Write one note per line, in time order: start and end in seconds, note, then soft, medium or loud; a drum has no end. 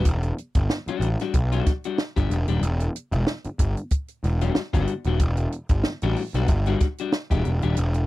0.05 0.31 E1 loud
0.05 kick medium
0.05 closed hi-hat loud
0.23 closed hi-hat soft
0.38 closed hi-hat medium
0.55 0.67 G1 medium
0.55 kick medium
0.55 closed hi-hat soft
0.70 snare loud
0.87 1.08 G3 medium
0.87 1.08 D4 medium
0.87 1.07 F#4 medium
0.87 muted picked electric bass stroke soft
0.87 closed hi-hat soft
1.00 1.15 A1 medium
1.00 closed hi-hat medium
1.19 1.35 G3 medium
1.19 1.35 D4 medium
1.19 1.35 F#4 medium
1.19 snare soft
1.19 closed hi-hat soft
1.34 1.60 B1 medium
1.34 kick medium
1.34 closed hi-hat medium
1.52 1.72 G3 medium
1.52 1.72 D4 medium
1.52 1.71 F#4 medium
1.52 closed hi-hat soft
1.66 kick medium
1.66 snare soft
1.66 closed hi-hat medium
1.84 2.00 G3 medium
1.84 1.99 D4 medium
1.84 1.99 F#4 medium
1.84 closed hi-hat medium
1.98 snare loud
2.16 2.28 G1 medium
2.16 2.36 G3 medium
2.16 2.36 D4 medium
2.16 2.35 G4 medium
2.16 kick medium
2.16 closed hi-hat soft
2.30 2.45 E1 medium
2.30 closed hi-hat medium
2.48 2.60 D#1 medium
2.48 2.63 G3 medium
2.48 2.63 D4 medium
2.48 2.62 G4 medium
2.48 closed hi-hat medium
2.61 2.88 E1 loud
2.61 closed hi-hat medium
2.80 closed hi-hat medium
2.96 closed hi-hat medium
3.12 3.24 E1 loud
3.12 closed hi-hat soft
3.27 snare loud
3.44 muted picked electric bass stroke soft
3.44 closed hi-hat soft
3.59 3.74 G1 medium
3.59 kick medium
3.59 closed hi-hat medium
3.77 closed hi-hat soft
3.91 kick medium
3.91 closed hi-hat medium
4.08 closed hi-hat soft
4.24 4.49 E1 medium
4.24 snare soft
4.24 closed hi-hat medium
4.41 4.61 G3 medium
4.41 4.61 D4 medium
4.41 4.61 F#4 medium
4.41 closed hi-hat medium
4.55 muted picked electric bass stroke soft
4.55 snare loud
4.73 4.85 G1 loud
4.73 4.93 G3 medium
4.73 4.93 D4 medium
4.73 4.93 F#4 medium
4.73 kick medium
4.73 closed hi-hat soft
4.88 closed hi-hat medium
5.04 5.17 D#1 medium
5.04 5.21 G3 medium
5.04 5.21 D4 medium
5.04 5.20 F#4 medium
5.04 closed hi-hat medium
5.20 5.46 E1 loud
5.20 kick medium
5.20 closed hi-hat medium
5.37 closed hi-hat medium
5.52 closed hi-hat medium
5.69 5.81 G1 medium
5.69 kick medium
5.69 closed hi-hat medium
5.83 muted picked electric bass stroke soft
5.83 snare loud
6.02 6.14 A1 medium
6.02 6.23 G3 medium
6.02 6.22 D4 medium
6.02 6.22 F#4 medium
6.02 closed hi-hat soft
6.16 open hi-hat medium
6.34 6.46 B1 medium
6.34 6.49 G3 medium
6.34 6.49 D4 medium
6.34 6.49 F#4 medium
6.34 snare soft
6.34 closed hi-hat soft
6.48 6.74 G1 loud
6.48 kick medium
6.48 closed hi-hat medium
6.66 6.87 G3 medium
6.66 6.86 D4 medium
6.66 6.86 F#4 medium
6.66 closed hi-hat soft
6.80 kick medium
6.80 snare soft
6.80 closed hi-hat medium
6.98 7.14 G3 soft
6.98 7.14 D4 medium
6.98 7.13 F#4 medium
6.98 closed hi-hat medium
7.12 snare loud
7.31 7.42 E1 medium
7.31 7.51 G3 medium
7.31 7.51 D4 medium
7.31 7.50 G4 medium
7.31 kick medium
7.31 closed hi-hat soft
7.45 7.60 E1 medium
7.45 closed hi-hat medium
7.62 7.75 D#1 medium
7.62 7.78 G3 soft
7.62 7.77 D4 medium
7.62 7.77 G4 medium
7.62 closed hi-hat soft
7.77 8.03 E1 loud
7.77 closed hi-hat loud
7.94 closed hi-hat medium